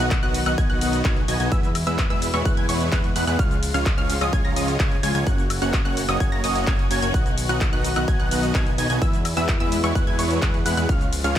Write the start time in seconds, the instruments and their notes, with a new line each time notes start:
Already playing: string section D#3 F#3 B3 F#4
0.00 analog synth bass B1, supersaw synth B3 D#4 F#4 D#5 F#5, synth pluck F#6
0.11 kick, clap, closed hi-hat, cabasa
0.23 analog synth bass B1, supersaw synth B3 D#4 F#4 D#5 F#5, synth pluck F#6, closed hi-hat
0.34 open hi-hat, ride, cabasa
0.46 analog synth bass B1, supersaw synth B3 D#4 F#4 D#5 F#5, synth pluck F#6, closed hi-hat, cabasa, high woodblock
0.58 analog synth bass B1, supersaw synth B3 D#4 F#4 D#5 G#5, synth pluck G#6, kick, closed hi-hat, cabasa
0.70 analog synth bass B1, supersaw synth B3 D#4 F#4 D#5 F#5, synth pluck F#6, closed hi-hat
0.81 analog synth bass B1, supersaw synth B3 D#4 F#4 D#5 F#5, synth pluck F#6, open hi-hat, ride, cabasa
0.93 closed hi-hat, cabasa
1.05 analog synth bass B1, supersaw synth B3 F#4 D#5 G#5, synth pluck G#6, kick, clap, closed hi-hat, cabasa
1.17 closed hi-hat
1.28 analog synth bass B1, supersaw synth B3 D#4 F#4 D#5 G#5, synth pluck G#6, open hi-hat, ride, cabasa
1.40 analog synth bass B1, supersaw synth B3 D#4 F#4 D#5 G#5, synth pluck G#6, closed hi-hat, cabasa
1.52 analog synth bass E2, string section B2 E3 G#3 E4, supersaw synth G#3 B3 E4 B4 E5, synth pluck E6, kick, closed hi-hat, cabasa
1.63 closed hi-hat, cabasa
1.75 open hi-hat, ride, cabasa, high woodblock
1.87 analog synth bass E2, supersaw synth G#3 B3 E4 B4 E5, synth pluck E6, closed hi-hat, cabasa
1.99 kick, clap, closed hi-hat, cabasa
2.10 analog synth bass E2, supersaw synth G#3 B3 E4 B4 E5, synth pluck E6, closed hi-hat
2.22 open hi-hat, ride, cabasa
2.34 analog synth bass E2, supersaw synth G#3 B3 E4 B4 C#5, synth pluck C#6, closed hi-hat, cabasa, high woodblock
2.45 supersaw synth G#3 B3 B4, synth pluck F#6, kick, closed hi-hat, cabasa
2.57 analog synth bass E2, supersaw synth G#3 B3 E4 B4 G#5, synth pluck G#6, closed hi-hat
2.69 analog synth bass E2, supersaw synth G#3 B3 E4 B4 C#5, synth pluck C#6, open hi-hat, ride, cabasa
2.81 closed hi-hat, cabasa
2.92 supersaw synth G#3 B3 E4 B4 F#5, synth pluck F#6, kick, clap, closed hi-hat, cabasa
3.04 closed hi-hat
3.16 analog synth bass E2, supersaw synth G#3 B3 E4 B4 F#5, synth pluck F#6, open hi-hat, ride, cabasa
3.27 analog synth bass E2, supersaw synth G#3 B3 E4 B4 F#5, synth pluck F#6, closed hi-hat, cabasa
3.39 string section C#3 F3 F4, supersaw synth G#3 C#4 F4 C#5 F5, synth pluck F6, kick, closed hi-hat, cabasa
3.51 closed hi-hat, cabasa
3.63 open hi-hat, ride, cabasa
3.74 analog synth bass C#2, supersaw synth G#3 C#4 F4 C#5 F5, synth pluck F6, closed hi-hat, cabasa
3.86 kick, clap, closed hi-hat, cabasa
3.98 analog synth bass C#2, supersaw synth G#3 C#4 F4 C#5 F5, synth pluck F6, closed hi-hat
4.10 open hi-hat, ride, cabasa
4.21 analog synth bass C#2, supersaw synth G#3 C#4 F4 C#5 D#5, synth pluck D#6, closed hi-hat, cabasa, high woodblock
4.33 analog synth bass C#2, supersaw synth G#3 C#4, synth pluck G#6, kick, closed hi-hat, cabasa
4.44 analog synth bass C#2, supersaw synth G#3 C#4 F4 C#5 A#5, synth pluck A#6, closed hi-hat
4.56 analog synth bass C#2, supersaw synth G#3 C#4 F4 C#5 D#5, synth pluck D#6, open hi-hat, ride, cabasa
4.68 closed hi-hat, cabasa
4.80 supersaw synth C#4 C#5, synth pluck G#6, kick, clap, closed hi-hat, cabasa
4.92 closed hi-hat
5.03 analog synth bass C#2, supersaw synth G#3 C#4 F4 C#5 G#5, synth pluck G#6, open hi-hat, ride, cabasa
5.15 analog synth bass C#2, supersaw synth G#3 C#4 F4 C#5 G#5, synth pluck G#6, closed hi-hat, cabasa
5.27 analog synth bass F#1, string section F#3 A#3 F#4, supersaw synth A#3 C#4 F#4 C#5 F#5, synth pluck F#6, kick, closed hi-hat, cabasa
5.38 closed hi-hat, cabasa
5.50 open hi-hat, ride, cabasa, high woodblock
5.62 analog synth bass F#1, supersaw synth A#3 C#4 F#4 C#5 F#5, synth pluck F#6, closed hi-hat, cabasa
5.74 kick, clap, closed hi-hat, cabasa
5.85 analog synth bass F#1, supersaw synth A#3 C#4 F#4 C#5 F#5, synth pluck F#6, closed hi-hat
5.97 open hi-hat, ride, cabasa
6.09 analog synth bass F#1, supersaw synth A#3 C#4 F#4 C#5 D#5, synth pluck D#6, closed hi-hat, cabasa, high woodblock
6.20 supersaw synth A#3 C#4 F#4 C#5, synth pluck G#6, kick, closed hi-hat, cabasa
6.32 analog synth bass F#1, supersaw synth A#3 C#4 F#4 C#5 A#5, synth pluck A#6, closed hi-hat
6.44 analog synth bass F#1, supersaw synth A#3 C#4 F#4 C#5 D#5, synth pluck D#6, open hi-hat, ride, cabasa
6.55 closed hi-hat, cabasa
6.67 supersaw synth A#3 C#4 F#4 C#5, synth pluck G#6, kick, clap, closed hi-hat, cabasa
6.79 closed hi-hat
6.91 analog synth bass F#1, supersaw synth A#3 C#4 F#4 C#5 G#5, synth pluck G#6, open hi-hat, ride, cabasa
7.02 analog synth bass F#1, supersaw synth A#3 C#4 F#4 C#5 G#5, synth pluck G#6, closed hi-hat, cabasa
7.14 analog synth bass B1, string section D#3 B3, supersaw synth B3 D#4 F#4 F#5, synth pluck F#6, kick, closed hi-hat, cabasa
7.26 closed hi-hat, cabasa
7.38 open hi-hat, ride, cabasa
7.49 analog synth bass B1, supersaw synth B3 D#4 F#4 D#5 F#5, synth pluck F#6, closed hi-hat, cabasa
7.61 kick, clap, closed hi-hat, cabasa
7.73 analog synth bass B1, supersaw synth B3 D#4 F#4 D#5 F#5, synth pluck F#6, closed hi-hat
7.84 open hi-hat, ride, cabasa
7.96 analog synth bass B1, supersaw synth B3 D#4 F#4 D#5 F#5, synth pluck F#6, closed hi-hat, cabasa, high woodblock
8.08 analog synth bass B1, supersaw synth B3 D#4 F#4 D#5 G#5, synth pluck G#6, kick, closed hi-hat, cabasa
8.20 analog synth bass B1, supersaw synth B3 D#4 F#4 D#5 F#5, synth pluck F#6, closed hi-hat
8.31 analog synth bass B1, supersaw synth B3 D#4 F#4 D#5 F#5, synth pluck F#6, open hi-hat, ride, cabasa
8.43 closed hi-hat, cabasa
8.55 supersaw synth B3 D#4 F#4 G#5, synth pluck G#6, kick, clap, closed hi-hat, cabasa
8.67 closed hi-hat
8.78 analog synth bass B1, supersaw synth B3 D#4 F#4 D#5 G#5, synth pluck G#6, open hi-hat, ride, cabasa
8.90 analog synth bass B1, supersaw synth B3 D#4 F#4 D#5 G#5, synth pluck G#6, closed hi-hat, cabasa
9.02 analog synth bass E2, string section B2 E3 G#3 E4, supersaw synth G#3 B3 E4 B4 E5, synth pluck E6, kick, closed hi-hat, cabasa
9.13 closed hi-hat, cabasa
9.25 open hi-hat, ride, cabasa, high woodblock
9.37 analog synth bass E2, supersaw synth G#3 B3 E4 B4 E5, synth pluck E6, closed hi-hat, cabasa
9.48 kick, clap, closed hi-hat, cabasa
9.60 analog synth bass E2, supersaw synth G#3 B3 E4 B4 E5, synth pluck E6, closed hi-hat
9.72 open hi-hat, ride, cabasa
9.84 analog synth bass E2, supersaw synth G#3 B3 E4 B4 C#5, synth pluck C#6, closed hi-hat, cabasa, high woodblock
9.95 supersaw synth G#3 B3 E4 B4, synth pluck F#6, kick, closed hi-hat, cabasa
10.07 analog synth bass E2, supersaw synth G#3 B3 E4 B4 G#5, synth pluck G#6, closed hi-hat
10.19 analog synth bass E2, supersaw synth G#3 B3 E4 B4 C#5, synth pluck C#6, open hi-hat, ride, cabasa
10.31 closed hi-hat, cabasa
10.42 supersaw synth G#3 B3 F#5, synth pluck F#6, kick, clap, closed hi-hat, cabasa
10.54 closed hi-hat
10.66 analog synth bass E2, supersaw synth G#3 B3 E4 B4 F#5, synth pluck F#6, open hi-hat, ride, cabasa
10.77 analog synth bass E2, supersaw synth G#3 B3 E4 B4 F#5, synth pluck F#6, closed hi-hat, cabasa
10.89 analog synth bass C#2, string section C#3 F3 F4, supersaw synth G#3 C#4 F4 C#5 F5, synth pluck F6, kick, closed hi-hat, cabasa
11.01 closed hi-hat, cabasa
11.13 open hi-hat, ride, cabasa
11.24 analog synth bass C#2, supersaw synth G#3 C#4 F4 C#5 F5, synth pluck F6, closed hi-hat, cabasa